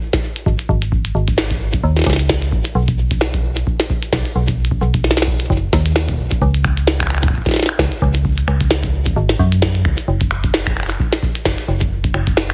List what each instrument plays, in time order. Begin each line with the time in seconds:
0.13 kick, snare
0.36 closed hi-hat
0.46 fm bass G#1, kick
0.59 closed hi-hat
0.69 fm bass G#1, kick
0.82 closed hi-hat
0.92 kick
1.05 closed hi-hat
1.15 fm bass G#1
1.28 kick, closed hi-hat
1.38 snare
1.51 kick, closed hi-hat
1.74 kick, closed hi-hat
1.84 fm bass D#2
1.96 snare
1.99 snare
2.02 snare
2.04 snare
2.06 fm bass C#2, kick, snare
2.10 snare
2.13 snare
2.16 snare, closed hi-hat
2.29 kick, snare
2.42 closed hi-hat
2.52 fm bass G#1, kick
2.65 closed hi-hat
2.75 fm bass B1
2.88 kick, closed hi-hat
3.11 kick, closed hi-hat
3.21 snare
3.34 kick, closed hi-hat
3.57 closed hi-hat
3.67 kick
3.80 snare
3.90 kick
4.03 closed hi-hat
4.13 fm bass B1, kick, snare
4.25 closed hi-hat
4.36 fm bass B1
4.48 kick, closed hi-hat
4.65 closed hi-hat
4.71 kick
4.81 fm bass B1
4.94 kick, closed hi-hat
5.04 snare
5.11 snare
5.17 snare, closed hi-hat
5.22 snare
5.27 kick
5.40 closed hi-hat
5.50 fm bass F#1, kick
5.73 fm bass D#2, kick, snare
5.86 closed hi-hat
5.96 snare
6.09 kick, closed hi-hat
6.11 kick
6.14 kick
6.16 kick
6.19 fm bass B1, kick
6.22 kick
6.25 kick
6.28 kick, closed hi-hat
6.32 kick
6.42 fm bass C#2, kick
6.54 closed hi-hat
6.64 finger snap, kick
6.77 closed hi-hat
6.87 snare
7.00 finger snap, kick, closed hi-hat
7.03 finger snap
7.07 finger snap
7.10 finger snap
7.15 finger snap
7.17 finger snap
7.23 finger snap, kick, closed hi-hat
7.26 finger snap, kick
7.30 kick
7.33 kick
7.38 kick
7.41 kick
7.46 kick, snare
7.49 snare
7.51 snare
7.54 snare
7.56 snare
7.59 snare
7.63 snare
7.66 finger snap, snare, closed hi-hat
7.79 fm bass C#2, kick, snare
7.92 closed hi-hat
8.02 fm bass C#2, kick
8.15 closed hi-hat
8.25 kick
8.38 closed hi-hat
8.48 fm bass C#2, finger snap
8.61 kick, closed hi-hat
8.71 snare
8.84 kick, closed hi-hat
9.06 kick, closed hi-hat
9.16 fm bass G#1
9.29 snare
9.39 fm bass F#2, kick
9.52 closed hi-hat
9.62 kick, snare
9.75 closed hi-hat
9.85 fm bass C#2, finger snap, kick
9.98 closed hi-hat
10.08 fm bass F#1
10.21 kick, closed hi-hat
10.31 finger snap
10.44 kick, closed hi-hat
10.54 snare
10.67 finger snap, kick, closed hi-hat
10.77 finger snap
10.80 finger snap
10.83 finger snap
10.86 finger snap
10.89 finger snap, closed hi-hat
10.92 finger snap
10.95 finger snap
10.97 finger snap, kick
11.13 snare
11.23 kick
11.35 closed hi-hat
11.45 fm bass F#1, kick, snare
11.58 closed hi-hat
11.68 fm bass F#1
11.81 kick, closed hi-hat
12.04 kick, closed hi-hat
12.14 fm bass F#1, finger snap
12.27 kick, closed hi-hat
12.37 snare
12.50 finger snap, closed hi-hat